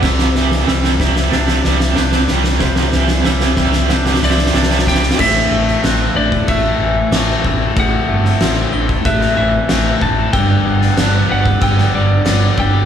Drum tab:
CC |x-------------------------------|--------------------------------|x-------x-------x-------x-------|x-------x-------x-------x-------|
SD |o-o-o-o-o-o-o-o-o-o-o-o-o-o-o-o-|o-o-o-o-o-o-o-o-o-oooooooooooooo|------o-o---------------o-------|------o-o---------o-----o-------|
BD |o-----------o-------------------|o-----------o---------------o---|o-------------o-o-----------o---|o-------------o-o-----------o---|

CC |x-------x-------x-------x-------|
SD |------o-o---------o-----o-------|
BD |o-------------o-o-----------o---|